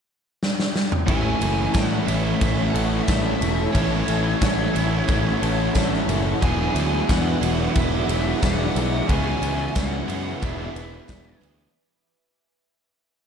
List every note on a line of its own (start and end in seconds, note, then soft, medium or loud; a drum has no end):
0.43 snare medium
0.60 snare medium
0.76 snare medium
0.92 mid tom loud
1.06 1.33 A1 medium
1.06 3.72 A2 medium
1.06 1.40 E3 medium
1.06 3.73 E3 loud
1.06 1.43 A3 medium
1.06 1.42 C#4 loud
1.06 1.41 E4 loud
1.06 1.40 A4 loud
1.06 6.37 E5 medium
1.06 1.73 G#5 loud
1.06 3.71 G#5 medium
1.06 6.37 C#6 medium
1.06 kick loud
1.06 ride medium
1.40 1.66 F#1 medium
1.40 2.06 E3 medium
1.40 1.73 A3 medium
1.40 1.75 C#4 medium
1.40 1.75 E4 medium
1.40 1.76 A4 medium
1.40 ride medium
1.40 tambourine medium
1.73 2.00 A2 medium
1.73 3.07 A3 medium
1.73 2.76 A3 medium
1.73 2.74 C#4 medium
1.73 2.74 E4 medium
1.73 2.73 A4 medium
1.73 2.08 F#5 medium
1.73 kick loud
1.73 snare loud
1.73 ride medium
1.73 tambourine medium
2.05 2.33 A1 medium
2.05 2.74 E3 medium
2.05 3.72 E3 medium
2.05 3.74 A3 medium
2.05 3.72 C#4 medium
2.05 3.75 E4 medium
2.05 3.75 A4 medium
2.05 2.76 E5 loud
2.05 ride medium
2.05 tambourine medium
2.09 3.71 A2 medium
2.40 2.67 A1 medium
2.40 3.39 C#4 medium
2.40 kick loud
2.40 ride loud
2.40 tambourine medium
2.70 3.09 A4 medium
2.70 3.07 F#5 medium
2.74 3.00 A1 medium
2.74 3.05 A2 medium
2.74 3.74 E3 medium
2.74 3.06 E3 medium
2.74 3.07 A3 medium
2.74 3.07 C#4 medium
2.74 3.08 E4 medium
2.74 ride medium
3.03 3.71 A2 medium
3.03 3.74 E3 medium
3.03 3.43 A3 medium
3.03 3.68 E5 medium
3.08 3.34 A1 medium
3.08 4.41 A3 medium
3.08 3.41 C#4 medium
3.08 3.41 E4 medium
3.08 3.40 A4 medium
3.08 kick loud
3.08 snare loud
3.08 ride loud
3.08 tambourine medium
3.40 3.66 E1 medium
3.40 3.74 A3 medium
3.40 5.06 C#4 medium
3.40 3.74 C#4 medium
3.40 3.75 E4 medium
3.40 3.76 A4 medium
3.40 ride medium
3.40 tambourine medium
3.72 4.00 A1 loud
3.72 4.40 A2 medium
3.72 6.41 E3 medium
3.72 4.07 E3 medium
3.72 4.10 A3 medium
3.72 4.08 C#4 loud
3.72 4.08 E4 medium
3.72 4.07 A4 loud
3.72 5.70 C#5 medium
3.72 6.39 F#5 medium
3.72 kick loud
3.72 ride loud
4.07 4.34 A1 medium
4.07 4.73 E3 medium
4.07 4.40 A3 medium
4.07 4.41 C#4 medium
4.07 4.43 E4 medium
4.07 4.43 A4 medium
4.07 ride medium
4.07 tambourine medium
4.41 4.67 A1 loud
4.41 5.43 A3 medium
4.41 5.73 A3 medium
4.41 5.42 C#4 medium
4.41 5.42 E4 medium
4.41 5.40 A4 medium
4.41 kick loud
4.41 snare loud
4.41 ride medium
4.41 tambourine medium
4.73 5.00 A1 medium
4.73 5.40 E3 medium
4.73 6.40 E3 medium
4.73 6.40 A3 medium
4.73 6.40 C#4 medium
4.73 6.44 E4 medium
4.73 6.39 A4 medium
4.73 ride medium
4.73 tambourine medium
4.78 6.41 A2 medium
5.08 5.34 A1 medium
5.08 6.07 C#4 medium
5.08 kick loud
5.08 ride medium
5.08 tambourine medium
5.41 5.67 A1 medium
5.41 5.73 A2 medium
5.41 6.41 E3 medium
5.41 5.75 E3 medium
5.41 5.74 A3 medium
5.41 5.75 C#4 medium
5.41 5.77 E4 medium
5.41 5.77 A4 medium
5.41 ride medium
5.74 6.00 A1 medium
5.74 6.39 A2 medium
5.74 6.41 E3 medium
5.74 6.41 A3 medium
5.74 6.10 A3 medium
5.74 6.10 C#4 medium
5.74 6.09 E4 medium
5.74 6.07 A4 medium
5.74 kick loud
5.74 snare loud
5.74 ride medium
5.74 tambourine medium
5.94 snare soft
6.08 6.33 F#1 medium
6.08 6.41 A3 medium
6.08 6.42 C#4 medium
6.08 6.41 C#4 medium
6.08 6.44 E4 medium
6.08 6.40 A4 medium
6.08 ride medium
6.08 tambourine medium
6.41 6.68 E1 loud
6.41 7.07 E3 medium
6.41 6.74 F#3 medium
6.41 8.07 G#3 medium
6.41 6.78 B3 loud
6.41 6.76 D4 loud
6.41 8.07 E4 loud
6.41 6.74 G#4 loud
6.41 11.70 E5 medium
6.41 9.06 F#5 medium
6.41 7.09 G#5 loud
6.41 9.06 D6 medium
6.41 kick loud
6.41 ride loud
6.75 7.00 D2 medium
6.75 7.41 F#3 medium
6.75 7.09 B3 medium
6.75 7.09 D4 medium
6.75 7.09 G#4 medium
6.75 ride medium
6.75 tambourine medium
7.07 7.34 E2 medium
7.07 8.41 E3 medium
7.07 8.40 B3 medium
7.07 8.11 B3 medium
7.07 8.09 D4 medium
7.07 8.08 G#4 medium
7.07 7.78 F#5 medium
7.07 kick loud
7.07 snare loud
7.07 ride loud
7.07 tambourine medium
7.41 7.67 E1 medium
7.41 8.06 F#3 medium
7.41 9.09 B3 medium
7.41 9.07 D4 medium
7.41 9.06 G#4 medium
7.41 ride medium
7.41 tambourine medium
7.45 9.08 E3 medium
7.75 8.01 E1 loud
7.75 8.74 D4 medium
7.75 8.45 E5 loud
7.75 kick loud
7.75 ride loud
7.75 tambourine medium
8.07 8.33 E1 medium
8.07 8.41 E3 medium
8.07 9.08 F#3 medium
8.07 8.40 G#3 medium
8.07 8.42 D4 medium
8.07 8.44 E4 medium
8.07 8.42 G#4 medium
8.07 ride medium
8.12 8.42 B3 medium
8.41 8.68 E1 medium
8.41 9.08 E3 medium
8.41 9.07 G#3 medium
8.41 9.08 B3 medium
8.41 8.76 B3 medium
8.41 8.74 D4 medium
8.41 9.10 E4 medium
8.41 8.73 G#4 medium
8.41 9.10 F#5 medium
8.41 kick loud
8.41 snare loud
8.41 ride loud
8.41 tambourine medium
8.74 9.01 B1 medium
8.74 9.08 B3 medium
8.74 9.08 D4 medium
8.74 9.07 D4 medium
8.74 9.06 G#4 medium
8.74 ride medium
8.74 tambourine medium
9.07 9.34 C#2 loud
9.07 9.74 C#3 medium
9.07 9.74 E3 loud
9.07 9.43 G#3 medium
9.07 9.40 B3 medium
9.07 9.42 C#4 loud
9.07 10.40 E4 loud
9.07 9.41 G#4 loud
9.07 11.71 B4 medium
9.07 11.72 G#5 medium
9.07 9.78 G#5 loud
9.07 kick loud
9.07 ride loud
9.07 tambourine soft
9.41 9.67 C#2 medium
9.41 9.75 G#3 medium
9.41 9.73 B3 medium
9.41 9.76 C#4 medium
9.41 9.77 G#4 medium
9.41 ride medium
9.41 tambourine medium
9.74 10.01 C#2 medium
9.74 10.39 E3 medium
9.74 10.40 G#3 medium
9.74 10.06 B3 medium
9.74 10.40 C#4 medium
9.74 10.41 G#4 medium
9.74 kick loud
9.74 snare loud
9.74 ride loud
9.74 tambourine loud
9.78 10.45 F#5 medium
10.07 10.33 F#2 medium
10.07 10.39 E3 medium
10.07 10.40 G#3 medium
10.07 10.39 B3 medium
10.07 10.39 C#4 medium
10.07 10.39 G#4 medium
10.07 ride medium
10.07 tambourine medium
10.11 10.41 C#3 medium
10.40 10.67 E1 medium
10.40 11.06 E3 loud
10.40 11.72 G#3 medium
10.40 10.73 B3 medium
10.40 10.75 B3 loud
10.40 10.73 D4 loud
10.40 11.73 E4 medium
10.40 10.72 G#4 loud
10.40 11.38 E5 medium
10.40 kick loud
10.40 ride medium
10.40 tambourine medium
10.73 10.99 E1 medium
10.73 11.06 B3 medium
10.73 11.07 B3 medium
10.73 11.08 D4 medium
10.73 11.09 G#4 medium
10.73 ride medium
10.73 tambourine soft
11.07 11.34 E1 medium
11.07 11.72 E3 medium
11.07 11.74 B3 medium
11.07 11.42 B3 medium
11.07 11.41 D4 medium
11.07 11.38 G#4 medium
11.07 kick loud
11.07 snare loud
11.07 ride medium
11.07 tambourine medium
11.40 11.66 D2 medium
11.40 11.73 B3 medium
11.40 11.74 D4 medium
11.40 11.73 D4 medium
11.40 11.71 G#4 medium
11.40 ride medium
11.40 tambourine medium
11.45 11.74 E3 medium